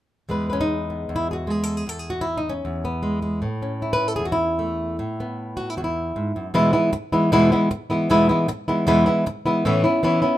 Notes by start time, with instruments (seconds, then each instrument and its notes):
0.29 nylon-string guitar E2 G#3 B3 B4
0.50 nylon-string guitar C#4 B4
0.61 nylon-string guitar D#4
0.90 nylon-string guitar B3
1.09 nylon-string guitar E2
1.16 nylon-string guitar E4
1.31 nylon-string guitar F#4 G#4
1.47 nylon-string guitar G#3 G#4
1.64 nylon-string guitar A4
1.77 nylon-string guitar G#4
1.87 nylon-string guitar E2 A4
1.99 nylon-string guitar G#4
2.10 nylon-string guitar F#4
2.21 nylon-string guitar E4
2.37 nylon-string guitar D#4
2.49 nylon-string guitar C#4
2.65 nylon-string guitar E2
2.85 nylon-string guitar B3
3.03 nylon-string guitar G#3
3.22 nylon-string guitar G#3
3.42 nylon-string guitar A2
3.62 nylon-string guitar C#4
3.82 nylon-string guitar E4
3.93 nylon-string guitar B4
4.08 nylon-string guitar A4
4.16 nylon-string guitar E2 G#4
4.25 nylon-string guitar F#4
4.32 nylon-string guitar E4
4.59 nylon-string guitar A3
4.99 nylon-string guitar A2
5.20 nylon-string guitar B3
5.57 nylon-string guitar F#4
5.70 nylon-string guitar E4
5.77 nylon-string guitar E2 F#4
5.84 nylon-string guitar E4
6.16 nylon-string guitar G#2
6.36 nylon-string guitar F#2
6.54 nylon-string guitar E2 B2 E3 G#3 B3 E4
6.73 nylon-string guitar E3 G#3 B3 E4
6.93 muted nylon-string guitar stroke
7.12 nylon-string guitar E3 G#3 B3 E4
7.32 nylon-string guitar E2 B2 E3 G#3 B3 E4
7.52 nylon-string guitar E3 G#3 B3 E4
7.71 muted nylon-string guitar stroke
7.90 nylon-string guitar E3 G#3 B3 E4
8.10 nylon-string guitar E2 B2 E3 G#3 B3 E4
8.29 nylon-string guitar E3 G#3 B3 E4
8.48 muted nylon-string guitar stroke
8.68 nylon-string guitar E3 G#3 B3 E4
8.87 nylon-string guitar E2 B2 E3 G#3 B3 E4
9.06 nylon-string guitar E3 G#3 B3 E4
9.26 muted nylon-string guitar stroke
9.46 nylon-string guitar E3 G#3 B3 E4
9.65 nylon-string guitar A2 E3 B3 C#4 E4
9.84 nylon-string guitar B3 C#4 E4
10.03 nylon-string guitar E3 B3 C#4 E4
10.22 nylon-string guitar B3 C#4 E4